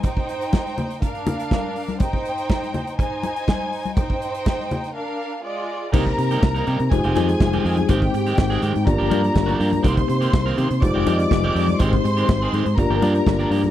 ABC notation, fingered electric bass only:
X:1
M:4/4
L:1/16
Q:1/4=123
K:Ablyd
V:1 name="Fingered electric bass" clef=bass
z16 | z16 | z16 | C,,2 C,2 C,,2 C, C, F,,, F,,, F,,2 F,,,2 F,,2 |
A,,,2 A,,2 A,,,2 A,, A,, G,,, G,,, G,,2 G,,,2 G,,2 | C,,2 C,2 C,,2 C, C, F,,, F,,, F,,2 F,,,2 F,,2 | A,,,2 A,,2 A,,,2 A,, A,, G,,, G,,, G,,2 G,,,2 G,,2 |]